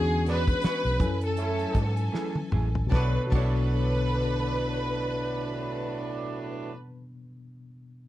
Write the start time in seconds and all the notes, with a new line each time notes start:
Already playing: E2 D3 E3 G#3 B3 C#4 D4 F#4 G#4 C#5
0.26 G#3 B3 D4, snare, closed hi-hat
0.31 B4
0.48 kick, closed hi-hat
0.62 D4 G#4 C#5, muted fingered electric bass stroke, snare, closed hi-hat
0.84 B1, closed hi-hat
0.98 F#2 E3 F#3 C#4 E4 A4 G#5, kick, closed hi-hat
1.21 closed hi-hat
1.25 A4
1.37 A3 C#4 E4, closed hi-hat
1.59 closed hi-hat
1.75 G#2, kick, closed hi-hat
1.97 closed hi-hat
2.12 A3 E4 G#4, snare
2.35 high tom
2.52 A1 A3 E4 G#4, mid tom
2.75 floor tom
2.87 B2 B3 D4 A5
2.91 B1 A2 D3 F#3 D4 F#4 A4 B4 C#5 D5, kick, snare
2.95 C#5
3.27 B2 B3 D4
3.31 B1 A2 F#3 D4 F#4 A4 B4 A5, kick, crash
3.35 A4 C#5